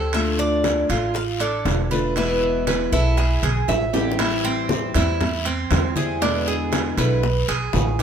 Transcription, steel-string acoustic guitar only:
0, 0, Header, 1, 3, 480
1, 0, Start_track
1, 0, Key_signature, 0, "minor"
1, 0, Tempo, 506757
1, 134, Time_signature, 4, 2, 24, 8
1, 7603, End_track
2, 0, Start_track
2, 0, Title_t, "Steel-string acoustic guitar"
2, 0, Program_c, 0, 25
2, 0, Note_on_c, 0, 55, 56
2, 0, Note_on_c, 0, 60, 55
2, 0, Note_on_c, 0, 67, 67
2, 120, Note_off_c, 0, 67, 0
2, 127, Note_off_c, 0, 60, 0
2, 129, Note_off_c, 0, 55, 0
2, 132, Note_on_c, 0, 50, 66
2, 137, Note_on_c, 0, 57, 69
2, 139, Note_on_c, 0, 62, 72
2, 142, Note_on_c, 0, 65, 68
2, 839, Note_off_c, 0, 65, 0
2, 843, Note_off_c, 0, 50, 0
2, 846, Note_off_c, 0, 57, 0
2, 847, Note_off_c, 0, 62, 0
2, 851, Note_on_c, 0, 65, 62
2, 857, Note_on_c, 0, 62, 59
2, 867, Note_on_c, 0, 57, 55
2, 1067, Note_off_c, 0, 57, 0
2, 1075, Note_off_c, 0, 62, 0
2, 1077, Note_off_c, 0, 65, 0
2, 1807, Note_on_c, 0, 65, 65
2, 1821, Note_on_c, 0, 62, 59
2, 1824, Note_on_c, 0, 57, 56
2, 2040, Note_off_c, 0, 65, 0
2, 2047, Note_off_c, 0, 62, 0
2, 2047, Note_on_c, 0, 52, 72
2, 2048, Note_on_c, 0, 47, 72
2, 2049, Note_off_c, 0, 57, 0
2, 2057, Note_on_c, 0, 56, 77
2, 2060, Note_on_c, 0, 59, 79
2, 2062, Note_on_c, 0, 64, 69
2, 2760, Note_off_c, 0, 47, 0
2, 2760, Note_off_c, 0, 52, 0
2, 2765, Note_off_c, 0, 56, 0
2, 2765, Note_off_c, 0, 64, 0
2, 2767, Note_off_c, 0, 59, 0
2, 2777, Note_on_c, 0, 64, 59
2, 2779, Note_on_c, 0, 59, 62
2, 2783, Note_on_c, 0, 56, 55
2, 2786, Note_on_c, 0, 52, 54
2, 3005, Note_off_c, 0, 64, 0
2, 3006, Note_off_c, 0, 59, 0
2, 3008, Note_off_c, 0, 56, 0
2, 3010, Note_off_c, 0, 52, 0
2, 3728, Note_on_c, 0, 64, 67
2, 3735, Note_on_c, 0, 59, 59
2, 3740, Note_on_c, 0, 56, 60
2, 3743, Note_on_c, 0, 52, 61
2, 3957, Note_off_c, 0, 52, 0
2, 3960, Note_off_c, 0, 64, 0
2, 3964, Note_off_c, 0, 59, 0
2, 3966, Note_off_c, 0, 56, 0
2, 3968, Note_on_c, 0, 52, 64
2, 3981, Note_on_c, 0, 55, 66
2, 3981, Note_on_c, 0, 60, 78
2, 3990, Note_on_c, 0, 64, 80
2, 4686, Note_off_c, 0, 55, 0
2, 4686, Note_off_c, 0, 60, 0
2, 4686, Note_off_c, 0, 64, 0
2, 4689, Note_on_c, 0, 64, 64
2, 4697, Note_on_c, 0, 60, 62
2, 4707, Note_on_c, 0, 55, 50
2, 4921, Note_off_c, 0, 64, 0
2, 4923, Note_off_c, 0, 55, 0
2, 4924, Note_off_c, 0, 60, 0
2, 4929, Note_off_c, 0, 52, 0
2, 5647, Note_on_c, 0, 64, 70
2, 5656, Note_on_c, 0, 60, 69
2, 5663, Note_on_c, 0, 55, 58
2, 5879, Note_off_c, 0, 64, 0
2, 5884, Note_off_c, 0, 60, 0
2, 5885, Note_on_c, 0, 47, 67
2, 5887, Note_off_c, 0, 55, 0
2, 5889, Note_on_c, 0, 50, 79
2, 5894, Note_on_c, 0, 56, 84
2, 5897, Note_on_c, 0, 59, 68
2, 5899, Note_on_c, 0, 64, 86
2, 6598, Note_off_c, 0, 47, 0
2, 6600, Note_off_c, 0, 50, 0
2, 6602, Note_off_c, 0, 59, 0
2, 6603, Note_off_c, 0, 56, 0
2, 6604, Note_off_c, 0, 64, 0
2, 6608, Note_on_c, 0, 64, 71
2, 6613, Note_on_c, 0, 59, 73
2, 6621, Note_on_c, 0, 56, 59
2, 6622, Note_on_c, 0, 50, 54
2, 6840, Note_off_c, 0, 64, 0
2, 6842, Note_off_c, 0, 59, 0
2, 6843, Note_off_c, 0, 50, 0
2, 6844, Note_off_c, 0, 56, 0
2, 7570, Note_on_c, 0, 64, 76
2, 7603, Note_off_c, 0, 64, 0
2, 7603, End_track
3, 0, Start_track
3, 0, Title_t, "Muted steel-string acoustic guitar strokes"
3, 1077, Note_on_c, 9, 29, 53
3, 1172, Note_off_c, 9, 29, 0
3, 3017, Note_on_c, 9, 29, 58
3, 3112, Note_off_c, 9, 29, 0
3, 4933, Note_on_c, 9, 29, 64
3, 5028, Note_off_c, 9, 29, 0
3, 6852, Note_on_c, 9, 29, 66
3, 6947, Note_off_c, 9, 29, 0
3, 7603, End_track
0, 0, End_of_file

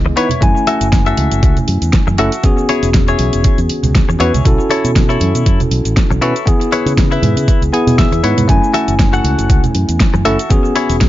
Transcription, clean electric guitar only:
0, 0, Header, 1, 3, 480
1, 0, Start_track
1, 0, Key_signature, 3, "minor"
1, 0, Tempo, 504202
1, 401, Time_signature, 4, 2, 24, 8
1, 10557, End_track
2, 0, Start_track
2, 0, Title_t, "Clean electric guitar"
2, 0, Program_c, 0, 27
2, 158, Note_on_c, 0, 64, 102
2, 163, Note_on_c, 0, 71, 81
2, 163, Note_on_c, 0, 73, 115
2, 400, Note_off_c, 0, 64, 0
2, 401, Note_off_c, 0, 71, 0
2, 402, Note_off_c, 0, 73, 0
2, 641, Note_on_c, 0, 76, 117
2, 643, Note_on_c, 0, 69, 86
2, 647, Note_on_c, 0, 66, 101
2, 828, Note_off_c, 0, 66, 0
2, 828, Note_off_c, 0, 69, 0
2, 829, Note_off_c, 0, 76, 0
2, 1014, Note_on_c, 0, 76, 90
2, 1015, Note_on_c, 0, 69, 72
2, 1018, Note_on_c, 0, 66, 72
2, 1493, Note_off_c, 0, 66, 0
2, 1494, Note_off_c, 0, 69, 0
2, 1495, Note_off_c, 0, 76, 0
2, 2080, Note_on_c, 0, 66, 109
2, 2086, Note_on_c, 0, 69, 96
2, 2086, Note_on_c, 0, 76, 119
2, 2321, Note_off_c, 0, 66, 0
2, 2322, Note_off_c, 0, 69, 0
2, 2324, Note_off_c, 0, 76, 0
2, 2562, Note_on_c, 0, 73, 110
2, 2564, Note_on_c, 0, 68, 95
2, 2566, Note_on_c, 0, 64, 88
2, 2748, Note_off_c, 0, 64, 0
2, 2748, Note_off_c, 0, 68, 0
2, 2749, Note_off_c, 0, 73, 0
2, 2936, Note_on_c, 0, 73, 93
2, 2938, Note_on_c, 0, 68, 70
2, 2941, Note_on_c, 0, 64, 69
2, 3415, Note_off_c, 0, 64, 0
2, 3415, Note_off_c, 0, 68, 0
2, 3416, Note_off_c, 0, 73, 0
2, 3997, Note_on_c, 0, 64, 101
2, 4004, Note_on_c, 0, 68, 85
2, 4004, Note_on_c, 0, 73, 119
2, 4240, Note_off_c, 0, 64, 0
2, 4241, Note_off_c, 0, 68, 0
2, 4243, Note_off_c, 0, 73, 0
2, 4479, Note_on_c, 0, 69, 93
2, 4480, Note_on_c, 0, 64, 95
2, 4482, Note_on_c, 0, 73, 120
2, 4666, Note_off_c, 0, 64, 0
2, 4667, Note_off_c, 0, 69, 0
2, 4668, Note_off_c, 0, 73, 0
2, 4846, Note_on_c, 0, 64, 82
2, 4854, Note_on_c, 0, 73, 74
2, 4857, Note_on_c, 0, 69, 69
2, 5332, Note_off_c, 0, 64, 0
2, 5333, Note_off_c, 0, 69, 0
2, 5333, Note_off_c, 0, 73, 0
2, 5919, Note_on_c, 0, 64, 116
2, 5924, Note_on_c, 0, 73, 113
2, 5927, Note_on_c, 0, 69, 91
2, 6161, Note_off_c, 0, 64, 0
2, 6162, Note_off_c, 0, 69, 0
2, 6162, Note_off_c, 0, 73, 0
2, 6400, Note_on_c, 0, 64, 87
2, 6402, Note_on_c, 0, 71, 101
2, 6403, Note_on_c, 0, 73, 120
2, 6586, Note_off_c, 0, 64, 0
2, 6588, Note_off_c, 0, 71, 0
2, 6589, Note_off_c, 0, 73, 0
2, 6772, Note_on_c, 0, 64, 84
2, 6779, Note_on_c, 0, 76, 85
2, 6781, Note_on_c, 0, 71, 61
2, 7254, Note_off_c, 0, 64, 0
2, 7255, Note_off_c, 0, 71, 0
2, 7256, Note_off_c, 0, 76, 0
2, 7363, Note_on_c, 0, 80, 74
2, 7585, Note_off_c, 0, 80, 0
2, 7599, Note_on_c, 0, 76, 75
2, 7840, Note_on_c, 0, 73, 106
2, 7843, Note_on_c, 0, 71, 96
2, 7845, Note_on_c, 0, 64, 90
2, 8047, Note_off_c, 0, 76, 0
2, 8080, Note_off_c, 0, 64, 0
2, 8082, Note_off_c, 0, 71, 0
2, 8082, Note_off_c, 0, 73, 0
2, 8316, Note_on_c, 0, 66, 103
2, 8322, Note_on_c, 0, 69, 82
2, 8322, Note_on_c, 0, 76, 114
2, 8506, Note_off_c, 0, 66, 0
2, 8507, Note_off_c, 0, 69, 0
2, 8508, Note_off_c, 0, 76, 0
2, 8691, Note_on_c, 0, 66, 76
2, 8697, Note_on_c, 0, 69, 70
2, 8697, Note_on_c, 0, 78, 94
2, 9173, Note_off_c, 0, 66, 0
2, 9174, Note_off_c, 0, 69, 0
2, 9176, Note_off_c, 0, 78, 0
2, 9760, Note_on_c, 0, 76, 117
2, 9761, Note_on_c, 0, 69, 90
2, 9764, Note_on_c, 0, 66, 98
2, 10000, Note_off_c, 0, 66, 0
2, 10001, Note_off_c, 0, 69, 0
2, 10001, Note_off_c, 0, 76, 0
2, 10239, Note_on_c, 0, 64, 120
2, 10246, Note_on_c, 0, 68, 91
2, 10246, Note_on_c, 0, 73, 120
2, 10427, Note_off_c, 0, 64, 0
2, 10428, Note_off_c, 0, 68, 0
2, 10429, Note_off_c, 0, 73, 0
2, 10557, End_track
3, 0, Start_track
3, 0, Title_t, "Muted clean electric guitar strokes"
3, 54, Note_on_c, 9, 29, 83
3, 149, Note_off_c, 9, 29, 0
3, 1972, Note_on_c, 9, 29, 86
3, 2068, Note_off_c, 9, 29, 0
3, 3891, Note_on_c, 9, 29, 85
3, 3986, Note_off_c, 9, 29, 0
3, 5812, Note_on_c, 9, 29, 82
3, 5907, Note_off_c, 9, 29, 0
3, 7733, Note_on_c, 9, 29, 85
3, 7828, Note_off_c, 9, 29, 0
3, 9650, Note_on_c, 9, 29, 83
3, 9745, Note_off_c, 9, 29, 0
3, 10557, End_track
0, 0, End_of_file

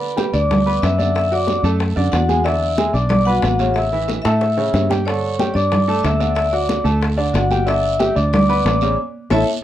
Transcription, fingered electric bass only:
0, 0, Header, 1, 2, 480
1, 0, Start_track
1, 0, Key_signature, 2, "major"
1, 0, Tempo, 326087
1, 1699, Time_signature, 4, 2, 24, 8
1, 14180, End_track
2, 0, Start_track
2, 0, Title_t, "Fingered electric bass"
2, 0, Program_c, 0, 33
2, 495, Note_on_c, 0, 38, 87
2, 1166, Note_off_c, 0, 38, 0
2, 1219, Note_on_c, 0, 42, 85
2, 2335, Note_off_c, 0, 42, 0
2, 2406, Note_on_c, 0, 42, 96
2, 2858, Note_off_c, 0, 42, 0
2, 2897, Note_on_c, 0, 42, 72
2, 3120, Note_off_c, 0, 42, 0
2, 3136, Note_on_c, 0, 40, 97
2, 4253, Note_off_c, 0, 40, 0
2, 4321, Note_on_c, 0, 35, 106
2, 4998, Note_off_c, 0, 35, 0
2, 5048, Note_on_c, 0, 33, 98
2, 6169, Note_off_c, 0, 33, 0
2, 6256, Note_on_c, 0, 45, 90
2, 6925, Note_off_c, 0, 45, 0
2, 6975, Note_on_c, 0, 43, 97
2, 8092, Note_off_c, 0, 43, 0
2, 8169, Note_on_c, 0, 43, 90
2, 8841, Note_off_c, 0, 43, 0
2, 8894, Note_on_c, 0, 38, 92
2, 10012, Note_off_c, 0, 38, 0
2, 10080, Note_on_c, 0, 38, 94
2, 10756, Note_off_c, 0, 38, 0
2, 10800, Note_on_c, 0, 31, 88
2, 11925, Note_off_c, 0, 31, 0
2, 12013, Note_on_c, 0, 38, 99
2, 12684, Note_off_c, 0, 38, 0
2, 12734, Note_on_c, 0, 33, 93
2, 13181, Note_off_c, 0, 33, 0
2, 13702, Note_on_c, 0, 33, 100
2, 13878, Note_off_c, 0, 33, 0
2, 14180, End_track
0, 0, End_of_file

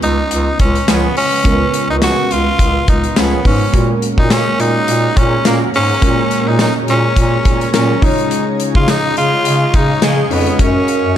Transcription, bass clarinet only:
0, 0, Header, 1, 2, 480
1, 0, Start_track
1, 0, Key_signature, 6, "major"
1, 0, Tempo, 571429
1, 1219, Time_signature, 4, 2, 24, 8
1, 9387, End_track
2, 0, Start_track
2, 0, Title_t, "Bass clarinet"
2, 0, Program_c, 0, 71
2, 17, Note_on_c, 0, 37, 109
2, 191, Note_off_c, 0, 37, 0
2, 257, Note_on_c, 0, 37, 111
2, 430, Note_off_c, 0, 37, 0
2, 501, Note_on_c, 0, 37, 108
2, 673, Note_off_c, 0, 37, 0
2, 736, Note_on_c, 0, 37, 107
2, 910, Note_off_c, 0, 37, 0
2, 1217, Note_on_c, 0, 37, 102
2, 1391, Note_off_c, 0, 37, 0
2, 1588, Note_on_c, 0, 37, 103
2, 1762, Note_off_c, 0, 37, 0
2, 1937, Note_on_c, 0, 37, 101
2, 2110, Note_off_c, 0, 37, 0
2, 2177, Note_on_c, 0, 37, 109
2, 2351, Note_off_c, 0, 37, 0
2, 2420, Note_on_c, 0, 37, 99
2, 2592, Note_off_c, 0, 37, 0
2, 2656, Note_on_c, 0, 37, 103
2, 2830, Note_off_c, 0, 37, 0
2, 2898, Note_on_c, 0, 44, 108
2, 3071, Note_off_c, 0, 44, 0
2, 3138, Note_on_c, 0, 46, 105
2, 3311, Note_off_c, 0, 46, 0
2, 3509, Note_on_c, 0, 46, 101
2, 3682, Note_off_c, 0, 46, 0
2, 3857, Note_on_c, 0, 46, 101
2, 4030, Note_off_c, 0, 46, 0
2, 4098, Note_on_c, 0, 46, 98
2, 4271, Note_off_c, 0, 46, 0
2, 4341, Note_on_c, 0, 46, 112
2, 4513, Note_off_c, 0, 46, 0
2, 4578, Note_on_c, 0, 46, 106
2, 4751, Note_off_c, 0, 46, 0
2, 4818, Note_on_c, 0, 44, 89
2, 4991, Note_off_c, 0, 44, 0
2, 5059, Note_on_c, 0, 46, 100
2, 5232, Note_off_c, 0, 46, 0
2, 5431, Note_on_c, 0, 46, 104
2, 5604, Note_off_c, 0, 46, 0
2, 5779, Note_on_c, 0, 46, 104
2, 5952, Note_off_c, 0, 46, 0
2, 6019, Note_on_c, 0, 46, 113
2, 6191, Note_off_c, 0, 46, 0
2, 6262, Note_on_c, 0, 46, 98
2, 6434, Note_off_c, 0, 46, 0
2, 6499, Note_on_c, 0, 46, 113
2, 6672, Note_off_c, 0, 46, 0
2, 7350, Note_on_c, 0, 49, 105
2, 7523, Note_off_c, 0, 49, 0
2, 7699, Note_on_c, 0, 49, 104
2, 7871, Note_off_c, 0, 49, 0
2, 7939, Note_on_c, 0, 49, 110
2, 8112, Note_off_c, 0, 49, 0
2, 8181, Note_on_c, 0, 49, 109
2, 8353, Note_off_c, 0, 49, 0
2, 8418, Note_on_c, 0, 49, 104
2, 8591, Note_off_c, 0, 49, 0
2, 8657, Note_on_c, 0, 41, 99
2, 8830, Note_off_c, 0, 41, 0
2, 8897, Note_on_c, 0, 42, 105
2, 9071, Note_off_c, 0, 42, 0
2, 9269, Note_on_c, 0, 42, 102
2, 9387, Note_off_c, 0, 42, 0
2, 9387, End_track
0, 0, End_of_file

